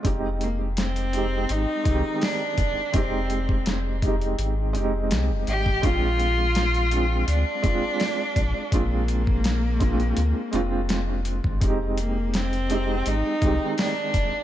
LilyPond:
<<
  \new Staff \with { instrumentName = "Cello" } { \time 4/4 \key f \dorian \tempo 4 = 83 r8 bes8 c'4 ees'4 d'4 | c'4 r2 r8 g'8 | f'2 d'2 | bes2.~ bes8 r8 |
r8 bes8 c'4 ees'4 d'4 | }
  \new Staff \with { instrumentName = "Felt piano" } { \time 4/4 \key f \dorian <aes c' ees' g'>4. <aes c' ees' g'>4 <ees aes c' g'>4. | <aes c' ees' g'>4. <aes c' ees' g'>4 <aes c' ees' g'>4. | <aes c' d' f'>4. <aes c' d' f'>4 <aes c' d' f'>4. | <aes c' d' f'>4. <aes c' d' f'>4 <aes c' d' f'>4. |
<aes c' ees' g'>4. <aes c' ees' g'>4 <ees aes c' g'>4. | }
  \new Staff \with { instrumentName = "Sub bass" } { \clef bass \time 4/4 \key f \dorian f,,2 aes,,16 r16 c,16 r8. f,,16 r16 | f,,2 aes,,8 f,,8 c,16 f,,16 aes,,8 | bes,,2 d,16 r16 f,,16 r8. bes,,16 r16 | bes,,2 d,16 r16 f,,4~ f,,16 aes,,16 |
f,,2 aes,,16 r16 c,16 r8. f,,16 r16 | }
  \new DrumStaff \with { instrumentName = "Drums" } \drummode { \time 4/4 <hh bd>8 hh8 <hh sn>16 hh16 hh8 hh8 <hh bd>8 <hho sn>8 <hh bd>8 | <hh bd>8 hh16 bd16 <hh sn>8 <hh bd>16 hh16 hh8 hh8 <hh sn>8 hh16 bd16 | <hh bd>8 hh8 <hh sn>16 hh16 hh8 hh8 <hh bd>8 <hho sn>8 <hh bd>8 | <hh bd>8 hh16 bd16 <hh sn>8 <hh bd>16 hh16 hh8 hh8 <hh sn>8 hh16 bd16 |
<hh bd>8 hh8 <hh sn>16 hh16 hh8 hh8 <hh bd>8 <hho sn>8 <hh bd>8 | }
>>